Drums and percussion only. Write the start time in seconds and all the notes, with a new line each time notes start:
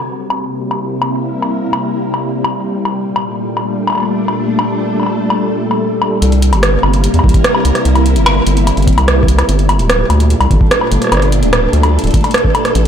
0.30 high woodblock
0.71 high woodblock
1.02 high woodblock
1.42 high woodblock
1.73 high woodblock
2.14 high woodblock
2.44 high woodblock
2.85 high woodblock
3.16 high woodblock
3.57 high woodblock
3.87 high woodblock
3.90 high woodblock
3.93 high woodblock
3.95 high woodblock
3.98 high woodblock
4.00 high woodblock
4.03 high woodblock
4.05 high woodblock
4.28 high woodblock
4.59 high woodblock
5.00 high woodblock
5.03 high woodblock
5.06 high woodblock
5.30 high woodblock
5.71 high woodblock
6.02 high woodblock
6.22 closed hi-hat
6.32 closed hi-hat
6.42 closed hi-hat
6.53 closed hi-hat, high woodblock
6.63 cross-stick, closed hi-hat
6.83 high woodblock
6.93 closed hi-hat
7.04 closed hi-hat
7.14 closed hi-hat
7.19 high woodblock
7.24 kick
7.29 closed hi-hat
7.34 kick, closed hi-hat
7.44 cross-stick, closed hi-hat
7.55 high woodblock
7.65 closed hi-hat
7.75 cross-stick, closed hi-hat
7.85 closed hi-hat
7.95 closed hi-hat, high woodblock
8.06 closed hi-hat
8.16 closed hi-hat
8.26 cross-stick, closed hi-hat, high woodblock
8.47 closed hi-hat
8.57 closed hi-hat
8.67 closed hi-hat, high woodblock
8.77 closed hi-hat
8.82 closed hi-hat
8.87 kick, closed hi-hat
8.93 closed hi-hat
8.98 closed hi-hat, high woodblock
9.08 cross-stick, closed hi-hat
9.23 kick
9.28 closed hi-hat
9.38 cross-stick, closed hi-hat, high woodblock
9.49 closed hi-hat
9.59 closed hi-hat
9.69 closed hi-hat, high woodblock
9.79 closed hi-hat
9.90 cross-stick, closed hi-hat
10.10 closed hi-hat, high woodblock
10.20 closed hi-hat
10.30 closed hi-hat
10.41 closed hi-hat, high woodblock
10.51 kick, closed hi-hat
10.61 kick
10.71 cross-stick, closed hi-hat
10.81 high woodblock
10.92 closed hi-hat
11.02 cross-stick, closed hi-hat
11.04 cross-stick
11.07 cross-stick
11.09 cross-stick
11.12 cross-stick, closed hi-hat, high woodblock
11.14 cross-stick
11.17 cross-stick
11.20 cross-stick, closed hi-hat
11.32 closed hi-hat
11.43 closed hi-hat
11.53 cross-stick, closed hi-hat, high woodblock
11.73 closed hi-hat
11.83 closed hi-hat, high woodblock
11.99 closed hi-hat
12.04 closed hi-hat
12.07 closed hi-hat
12.11 kick, closed hi-hat
12.14 closed hi-hat
12.17 closed hi-hat
12.21 closed hi-hat
12.24 closed hi-hat, high woodblock
12.31 cross-stick, closed hi-hat
12.34 closed hi-hat
12.38 closed hi-hat
12.45 kick
12.55 closed hi-hat, high woodblock
12.65 cross-stick, closed hi-hat
12.75 closed hi-hat